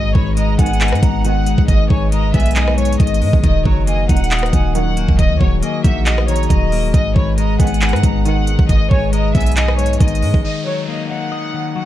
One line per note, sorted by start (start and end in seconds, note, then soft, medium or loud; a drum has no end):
0.00 0.14 G#1 loud
0.00 1.01 G#2 loud
0.00 3.40 G#3 medium
0.00 3.40 G#4 medium
0.00 3.40 B4 medium
0.00 0.12 D#5 loud
0.00 10.40 D#5 medium
0.15 0.57 G#1 loud
0.15 1.23 D#3 medium
0.15 0.34 C#5 medium
0.15 0.36 B5 medium
0.15 kick medium
0.37 1.45 G#3 medium
0.37 0.56 D#5 medium
0.37 0.58 A#5 medium
0.37 closed hi-hat medium
0.59 0.94 G#1 loud
0.59 0.69 G#2 loud
0.59 0.69 B2 medium
0.59 0.69 D#3 loud
0.59 1.68 B3 medium
0.59 1.20 F#5 medium
0.59 1.00 G#5 medium
0.59 kick medium
0.59 closed hi-hat medium
0.66 closed hi-hat medium
0.73 closed hi-hat medium
0.81 1.90 D#4 loud
0.81 clap loud
0.81 closed hi-hat medium
0.88 closed hi-hat medium
0.92 1.02 G#2 loud
0.92 cross-stick loud
0.92 closed hi-hat soft
1.03 1.56 G#1 loud
1.03 1.67 G#2 medium
1.03 1.24 A#5 medium
1.03 kick loud
1.03 closed hi-hat medium
1.24 1.56 G#2 medium
1.24 1.56 B2 loud
1.24 1.89 D#3 medium
1.24 1.56 D#3 loud
1.24 1.66 F#5 medium
1.24 closed hi-hat medium
1.46 2.11 G#3 medium
1.46 closed hi-hat medium
1.58 1.89 G#1 loud
1.58 kick loud
1.68 2.77 G#2 medium
1.68 1.87 D#5 loud
1.68 kick loud
1.68 closed hi-hat medium
1.90 2.32 G#1 loud
1.90 2.99 D#3 medium
1.90 2.09 C#5 medium
1.90 2.11 G#5 medium
1.90 kick medium
2.12 3.20 G#3 loud
2.12 2.31 D#5 medium
2.12 2.33 A#5 medium
2.12 closed hi-hat medium
2.34 2.97 B1 loud
2.34 3.44 B3 medium
2.34 2.53 E5 medium
2.34 2.96 G#5 medium
2.34 kick medium
2.34 closed hi-hat soft
2.40 closed hi-hat medium
2.46 closed hi-hat medium
2.51 closed hi-hat medium
2.56 3.44 D#4 loud
2.56 2.75 D#5 medium
2.56 clap loud
2.56 closed hi-hat medium
2.68 cross-stick loud
2.78 3.44 G#2 medium
2.78 2.97 C#5 medium
2.78 closed hi-hat medium
2.85 closed hi-hat medium
2.93 closed hi-hat medium
3.00 3.23 G#1 loud
3.00 3.42 D#3 medium
3.00 3.41 D#5 medium
3.00 kick loud
3.00 closed hi-hat medium
3.07 closed hi-hat medium
3.14 closed hi-hat medium
3.22 3.33 G#2 loud
3.22 3.44 G#3 medium
3.22 open hi-hat medium
3.33 3.43 G#1 loud
3.33 kick loud
3.43 3.65 D#1 loud
3.43 4.52 D#3 medium
3.43 6.90 F#4 medium
3.43 5.17 A#4 medium
3.43 3.63 D#5 loud
3.43 kick loud
3.43 closed hi-hat medium
3.65 4.08 F#1 loud
3.65 4.74 F#3 medium
3.65 3.85 C#5 medium
3.65 3.86 A#5 medium
3.65 kick medium
3.87 4.96 A#3 medium
3.87 4.07 D#5 medium
3.87 4.08 G#5 medium
3.87 closed hi-hat medium
4.09 4.51 D#1 loud
4.09 4.19 F#2 medium
4.09 4.19 A#2 medium
4.09 4.19 D#3 loud
4.09 5.19 D#4 medium
4.09 4.50 F#5 medium
4.09 4.71 F#5 medium
4.09 kick loud
4.09 closed hi-hat medium
4.17 closed hi-hat medium
4.24 closed hi-hat medium
4.31 5.41 D#5 loud
4.31 clap loud
4.31 closed hi-hat medium
4.39 closed hi-hat medium
4.43 cross-stick loud
4.43 closed hi-hat soft
4.53 5.06 D#1 loud
4.53 5.18 D#3 medium
4.53 4.74 G#5 medium
4.53 kick medium
4.53 closed hi-hat medium
4.75 5.07 F#2 loud
4.75 5.07 A#2 loud
4.75 5.07 D#3 loud
4.75 5.40 F#3 medium
4.75 5.16 F#5 medium
4.75 closed hi-hat medium
4.97 5.61 A#3 medium
4.97 closed hi-hat medium
5.09 5.32 D#1 loud
5.09 kick loud
5.19 6.27 D#3 loud
5.19 10.40 G#4 medium
5.19 5.38 D#5 loud
5.19 kick loud
5.19 closed hi-hat medium
5.30 5.40 D#2 loud
5.41 5.62 D#1 loud
5.41 6.49 F#3 medium
5.41 5.60 C#5 medium
5.41 5.61 F#5 medium
5.41 kick loud
5.62 6.71 A#3 medium
5.62 5.82 D#5 medium
5.62 5.84 G#5 medium
5.62 closed hi-hat medium
5.84 6.48 A#1 loud
5.84 6.94 D#4 medium
5.84 6.03 E5 medium
5.84 6.26 F#5 medium
5.84 kick medium
5.84 closed hi-hat medium
6.06 6.25 D#5 medium
6.06 6.94 D#5 loud
6.06 clap loud
6.06 closed hi-hat medium
6.18 cross-stick loud
6.28 6.94 D#3 medium
6.28 6.47 C#5 medium
6.28 6.90 A#5 medium
6.28 closed hi-hat medium
6.36 closed hi-hat medium
6.43 closed hi-hat soft
6.50 6.92 D#1 loud
6.50 6.94 F#3 medium
6.50 6.91 D#5 medium
6.50 kick loud
6.50 closed hi-hat medium
6.72 6.94 A#3 medium
6.72 open hi-hat medium
6.94 7.15 G#1 loud
6.94 8.02 G#2 loud
6.94 10.41 G#3 medium
6.94 10.41 B4 medium
6.94 7.13 D#5 loud
6.94 kick loud
6.94 closed hi-hat medium
7.16 7.58 G#1 loud
7.16 8.24 D#3 medium
7.16 7.35 C#5 medium
7.16 7.37 B5 medium
7.16 kick loud
7.38 8.46 G#3 medium
7.38 7.57 D#5 medium
7.38 7.59 A#5 medium
7.38 closed hi-hat medium
7.59 7.95 G#1 loud
7.59 7.69 G#2 medium
7.59 7.69 B2 medium
7.59 7.69 D#3 loud
7.59 8.69 B3 medium
7.59 8.21 F#5 medium
7.59 8.01 G#5 medium
7.59 kick loud
7.59 closed hi-hat medium
7.67 closed hi-hat medium
7.74 closed hi-hat medium
7.82 8.91 D#4 loud
7.82 clap loud
7.82 closed hi-hat medium
7.89 closed hi-hat medium
7.93 8.03 G#2 loud
7.93 cross-stick loud
7.93 closed hi-hat soft
8.03 8.57 G#1 loud
8.03 8.68 G#2 medium
8.03 8.24 A#5 medium
8.03 kick loud
8.03 closed hi-hat medium
8.25 8.57 G#2 loud
8.25 8.57 B2 loud
8.25 8.57 D#3 loud
8.25 8.90 D#3 medium
8.25 8.67 F#5 medium
8.25 closed hi-hat medium
8.47 9.12 G#3 medium
8.47 closed hi-hat medium
8.59 8.90 G#1 loud
8.59 kick loud
8.69 9.77 G#2 medium
8.69 8.88 D#5 loud
8.69 kick loud
8.69 closed hi-hat medium
8.91 9.33 G#1 loud
8.91 9.99 D#3 medium
8.91 9.10 C#5 medium
8.91 9.12 G#5 medium
8.91 kick loud
9.13 10.21 G#3 loud
9.13 9.32 D#5 medium
9.13 9.34 A#5 medium
9.13 closed hi-hat medium
9.35 9.98 B1 loud
9.35 10.44 B3 medium
9.35 9.54 E5 medium
9.35 9.97 G#5 medium
9.35 kick medium
9.35 closed hi-hat soft
9.41 closed hi-hat medium
9.46 closed hi-hat medium
9.52 closed hi-hat medium
9.57 10.44 D#4 loud
9.57 9.76 D#5 medium
9.57 clap loud
9.57 closed hi-hat medium
9.68 cross-stick loud
9.79 10.44 G#2 medium
9.79 9.98 C#5 medium
9.79 closed hi-hat medium
9.86 closed hi-hat medium
9.93 closed hi-hat medium
10.00 10.24 G#1 loud
10.00 10.43 D#3 medium
10.00 10.42 D#5 medium
10.00 kick loud
10.00 closed hi-hat medium
10.08 closed hi-hat medium
10.15 closed hi-hat medium
10.22 10.33 G#2 loud
10.22 10.44 G#3 medium
10.22 open hi-hat medium
10.34 10.44 G#1 loud
10.34 kick loud
10.44 11.53 D#3 medium
10.44 11.85 D#4 medium
10.44 10.63 D#5 medium
10.44 11.85 D#5 medium
10.44 11.85 F#5 medium
10.44 11.85 A#5 medium
10.44 downlifter medium
10.66 11.74 F#3 medium
10.66 10.85 C#5 medium
10.88 11.85 A#3 medium
10.88 11.07 D#5 medium
11.10 11.85 D#4 medium
11.10 11.72 F#5 medium
11.32 11.85 D#5 medium
11.54 11.85 D#3 medium
11.76 11.85 F#3 medium
11.76 11.85 F#5 medium